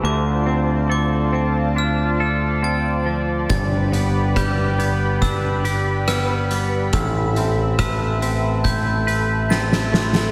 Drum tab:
HH |----------------|x-x-x-x-x-x-x-x-|x-x-x-x-x-x-----|
SD |----------------|----r-------r---|----r-------oooo|
BD |----------------|o---o---o-------|o---o---o-------|